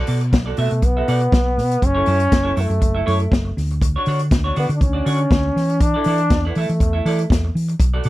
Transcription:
0.07 fingered electric bass B2, clean electric guitar F#4 A4 D5, open hi-hat
0.21 muted clean electric guitar stroke, closed hi-hat
0.31 fingered electric bass B1, muted clean electric guitar stroke, kick, snare, closed hi-hat
0.46 clean electric guitar F#4 A4 D5
0.57 fingered electric bass B2, trombone A3, clean electric guitar F#4 A4 E5, open hi-hat
0.70 fingered electric bass B2, muted clean electric guitar stroke, closed hi-hat
0.82 fingered electric bass B1, trombone B3, muted clean electric guitar stroke, kick, closed hi-hat
0.97 clean electric guitar F#4 A4 E5
1.08 fingered electric bass B2, clean electric guitar F#4 A4 D5, open hi-hat
1.20 muted clean electric guitar stroke, closed hi-hat
1.32 fingered electric bass B1, muted clean electric guitar stroke, kick, snare, closed hi-hat
1.47 muted clean electric guitar stroke
1.57 fingered electric bass B2, snare, open hi-hat
1.71 muted clean electric guitar stroke, closed hi-hat
1.82 fingered electric bass F#1, trombone C#4, muted clean electric guitar stroke, kick, closed hi-hat
1.95 clean electric guitar E4 A4 C#5
2.06 fingered electric bass F#2, clean electric guitar E4 A4 C#5, open hi-hat
2.20 muted clean electric guitar stroke, closed hi-hat
2.31 fingered electric bass F#1, muted clean electric guitar stroke, kick, snare, closed hi-hat
2.44 clean electric guitar E4 A4 C#5
2.56 fingered electric bass F#2, clean electric guitar E4 A4 E5, open hi-hat
2.61 trombone A3
2.69 fingered electric bass F#2, muted clean electric guitar stroke, closed hi-hat
2.80 fingered electric bass F#1, muted clean electric guitar stroke, kick, closed hi-hat
2.95 clean electric guitar E4 A4 E5
3.06 fingered electric bass F#2, clean electric guitar E4 A4 C#5, open hi-hat
3.20 muted clean electric guitar stroke, closed hi-hat
3.31 fingered electric bass F#1, muted clean electric guitar stroke, kick, snare, closed hi-hat
3.45 muted clean electric guitar stroke
3.57 fingered electric bass D2, snare, open hi-hat
3.70 muted clean electric guitar stroke, closed hi-hat
3.82 muted clean electric guitar stroke, kick, closed hi-hat
3.96 clean electric guitar D4 F#4 C#5
4.06 fingered electric bass D3, clean electric guitar D4 F#4 C#5, open hi-hat
4.19 closed hi-hat
4.31 fingered electric bass D2, muted clean electric guitar stroke, kick, snare, closed hi-hat
4.44 clean electric guitar D4 F#4 C#5
4.55 fingered electric bass D3, clean electric guitar D4 F#4 D5, open hi-hat
4.59 trombone B3
4.69 fingered electric bass D3, muted clean electric guitar stroke, closed hi-hat
4.75 trombone D4
4.80 fingered electric bass D2, trombone C#4, muted clean electric guitar stroke, kick, closed hi-hat
4.93 clean electric guitar D4 F#4 D5
5.05 fingered electric bass D3, clean electric guitar D4 F#4 C#5, open hi-hat
5.18 muted clean electric guitar stroke, closed hi-hat
5.31 fingered electric bass D2, muted clean electric guitar stroke, kick, snare, closed hi-hat
5.45 muted clean electric guitar stroke
5.56 fingered electric bass E3, snare, open hi-hat
5.70 muted clean electric guitar stroke, closed hi-hat
5.80 trombone D4, muted clean electric guitar stroke, kick, closed hi-hat
5.94 clean electric guitar E4 A4 D5
6.04 fingered electric bass E3, clean electric guitar E4 A4 D5, open hi-hat
6.18 muted clean electric guitar stroke, closed hi-hat
6.30 fingered electric bass E2, muted clean electric guitar stroke, kick, snare, closed hi-hat
6.45 clean electric guitar E4 A4 D5
6.49 trombone B3
6.55 fingered electric bass E3, trombone A3, clean electric guitar E4 A4 E5, open hi-hat
6.69 fingered electric bass E3, muted clean electric guitar stroke, closed hi-hat
6.80 fingered electric bass E2, muted clean electric guitar stroke, kick, closed hi-hat
6.93 clean electric guitar E4 A4 E5
7.05 fingered electric bass E3, clean electric guitar E4 A4 D5, open hi-hat
7.19 muted clean electric guitar stroke, closed hi-hat
7.30 fingered electric bass E2, muted clean electric guitar stroke, kick, snare, closed hi-hat
7.45 muted clean electric guitar stroke
7.55 fingered electric bass E3, open hi-hat
7.68 muted clean electric guitar stroke, closed hi-hat
7.80 fingered electric bass B1, muted clean electric guitar stroke, kick, closed hi-hat
7.94 clean electric guitar F#4 A4 D5
8.03 fingered electric bass B2, clean electric guitar F#4 A4, open hi-hat

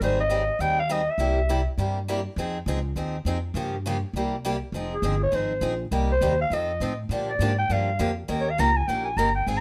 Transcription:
0.01 upright bass G#1, steel-string acoustic guitar D#3 G3 C4 D#4 G#4, clarinet C5
0.20 clarinet D#5
0.30 steel-string acoustic guitar D#3 G3 C4 D#4 G#4
0.59 upright bass D#2, steel-string acoustic guitar D#3 G3 C4 D#4 G#4, clarinet G5
0.80 clarinet F5
0.89 steel-string acoustic guitar D#3 G3 C4 D#4 G#4, clarinet D#5
1.11 clarinet E5
1.18 upright bass C2, steel-string acoustic guitar C3 G3 A#3 E4 G4
1.49 steel-string acoustic guitar C3 G3 A#3 E4 G4
1.77 upright bass G2, steel-string acoustic guitar C3 G3 A#3 E4 G4
2.08 steel-string acoustic guitar C3 G3 A#3 E4 G4
2.36 upright bass F2, steel-string acoustic guitar F3 C4 D#4 G#4
2.66 upright bass C#2, steel-string acoustic guitar F3 C4 D#4 G#4
2.96 upright bass D#2, steel-string acoustic guitar F3 C4 D#4 G#4
3.25 upright bass F2, steel-string acoustic guitar F3 C4 D#4 G#4
3.54 upright bass G2, steel-string acoustic guitar C#3 F3 A#3 F4 G4
3.86 steel-string acoustic guitar C#3 F3 A#3 F4 G4
4.13 upright bass C2, steel-string acoustic guitar C3 G3 A#3 E4 G4
4.45 steel-string acoustic guitar C3 G3 A#3 E4 G4
4.72 upright bass F1, steel-string acoustic guitar F3 C4 D#4 G#4
4.95 clarinet G#4
5.02 upright bass G1, steel-string acoustic guitar F3 C4 D#4 G#4
5.23 clarinet C#5
5.32 upright bass G#1, steel-string acoustic guitar F3 C4 D#4 G#4, clarinet C5
5.61 upright bass A#1, steel-string acoustic guitar F3 C4 D#4 G#4
5.91 upright bass C2, steel-string acoustic guitar C3 G3 A#3 D#4 G4
6.12 clarinet C5
6.21 upright bass D#2, steel-string acoustic guitar C3 G3 A#3 D#4 G4
6.41 clarinet F5
6.50 upright bass F2, steel-string acoustic guitar F3 C4 D#4 A4, clarinet D#5
6.80 upright bass A2, steel-string acoustic guitar F3 C4 D#4 A4
7.09 upright bass A#2, steel-string acoustic guitar D3 F3 A#3 D4 G4
7.30 clarinet D5
7.39 upright bass G#2, steel-string acoustic guitar D3 F3 A#3 D4 G4
7.59 clarinet G5
7.69 upright bass G2, steel-string acoustic guitar D3 F3 A#3 D4 G4, clarinet F5
7.99 upright bass F2, steel-string acoustic guitar D3 F3 A#3 D4 G4
8.28 upright bass D#2, steel-string acoustic guitar D#3 A#3 C#4 G4 A#4
8.41 clarinet C#5
8.50 clarinet F5
8.58 upright bass C#2, steel-string acoustic guitar D#3 A#3 C#4 G4 A#4, clarinet A#5
8.77 clarinet G#5
8.88 upright bass A#1, steel-string acoustic guitar D#3 A#3 C#4 G4 A#4, clarinet G5
9.05 clarinet G#5
9.17 upright bass G1, steel-string acoustic guitar D#3 A#3 C#4 G4 A#4, clarinet A#5
9.35 clarinet G5
9.47 upright bass G#1, steel-string acoustic guitar G#3 C4 F4 G#4, clarinet G#5

